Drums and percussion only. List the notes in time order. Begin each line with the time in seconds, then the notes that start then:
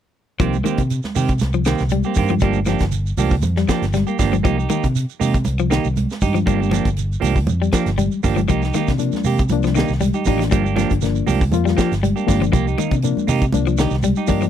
0.40 kick, closed hi-hat, shekere
0.53 high conga, shekere
0.65 closed hi-hat, high conga, shekere
0.77 kick, closed hi-hat, shekere
0.90 closed hi-hat, shekere
1.03 snare, high conga, shekere
1.15 open hi-hat, high conga, low conga, shekere
1.28 kick, closed hi-hat, shekere
1.39 snare, closed hi-hat, high conga, shekere
1.53 shekere
1.65 snare, closed hi-hat, shekere
1.78 snare, shekere
1.89 closed hi-hat, high conga, shekere
2.03 shekere
2.15 kick, open hi-hat, low conga, shekere
2.28 closed hi-hat, high conga, shekere
2.40 kick, closed hi-hat, shekere
2.53 high conga, shekere
2.66 snare, closed hi-hat, high conga, shekere
2.79 kick, snare, closed hi-hat, shekere
2.91 closed hi-hat, shekere
3.06 shekere
3.17 open hi-hat, high conga, low conga, shekere
3.30 kick, shekere
3.42 closed hi-hat, high conga, low conga, shekere
3.56 snare, shekere
3.69 kick, snare, closed hi-hat, shekere
3.82 snare, closed hi-hat, shekere
3.93 snare, closed hi-hat, high conga, shekere
4.07 shekere
4.19 kick, snare, open hi-hat, low conga, shekere
4.32 closed hi-hat, high conga, shekere
4.44 kick, closed hi-hat, shekere
4.60 shekere
4.70 closed hi-hat, high conga, shekere
4.83 kick, closed hi-hat, shekere
4.95 closed hi-hat, shekere
5.09 shekere
5.21 open hi-hat, high conga, low conga, shekere
5.34 kick, closed hi-hat, shekere
5.45 closed hi-hat, high conga, shekere
5.58 shekere
5.71 snare, closed hi-hat, shekere
5.84 shekere
5.96 closed hi-hat, high conga, shekere
6.10 snare, shekere
6.21 kick, open hi-hat, high conga, low conga, shekere
6.35 closed hi-hat, high conga, shekere
6.47 kick, closed hi-hat, shekere
6.60 high conga, shekere
6.71 snare, closed hi-hat, high conga, shekere
6.85 kick, closed hi-hat, shekere
6.96 closed hi-hat, shekere
7.12 shekere
7.22 open hi-hat, high conga, low conga, shekere
7.36 kick, shekere
7.46 closed hi-hat, high conga, shekere
7.63 shekere
7.72 kick, snare, closed hi-hat, shekere
7.86 snare, closed hi-hat, shekere
7.98 closed hi-hat, high conga, low conga, shekere
8.12 shekere
8.24 kick, open hi-hat, low conga, shekere
8.37 closed hi-hat, high conga, shekere
8.49 kick, closed hi-hat, shekere
8.62 snare, shekere
8.74 snare, closed hi-hat, high conga, shekere
8.87 kick, snare, closed hi-hat, shekere
8.99 closed hi-hat, shekere
9.12 snare, high conga, shekere
9.24 open hi-hat, high conga, low conga, shekere
9.38 kick, closed hi-hat, shekere
9.49 closed hi-hat, high conga, shekere
9.63 snare, shekere
9.75 snare, closed hi-hat, shekere
9.88 shekere
9.92 snare
10.00 closed hi-hat, high conga, low conga, shekere
10.13 shekere
10.25 kick, open hi-hat, low conga, shekere
10.40 snare, closed hi-hat, shekere
10.52 kick, closed hi-hat, shekere
10.63 high conga, shekere
10.76 snare, closed hi-hat, high conga, shekere
10.90 kick, closed hi-hat, shekere
11.01 snare, closed hi-hat, shekere
11.15 shekere
11.27 open hi-hat, high conga, low conga, shekere
11.41 kick, shekere
11.52 closed hi-hat, high conga, shekere
11.67 snare, shekere
11.78 kick, snare, closed hi-hat, shekere
11.92 snare, closed hi-hat, shekere
12.03 closed hi-hat, high conga, shekere
12.17 shekere
12.28 kick, snare, open hi-hat, high conga, low conga, shekere
12.41 closed hi-hat, shekere
12.53 kick, closed hi-hat, shekere
12.68 shekere
12.78 closed hi-hat, high conga, shekere
12.91 kick, closed hi-hat, shekere
13.02 closed hi-hat, shekere
13.17 high conga, shekere
13.28 open hi-hat, high conga, low conga, shekere
13.42 kick, closed hi-hat, shekere
13.53 closed hi-hat, high conga, low conga, shekere
13.66 shekere
13.78 snare, closed hi-hat, shekere
13.90 snare, shekere
14.03 closed hi-hat, high conga, shekere
14.16 shekere
14.27 kick, open hi-hat, low conga, shekere
14.41 closed hi-hat, shekere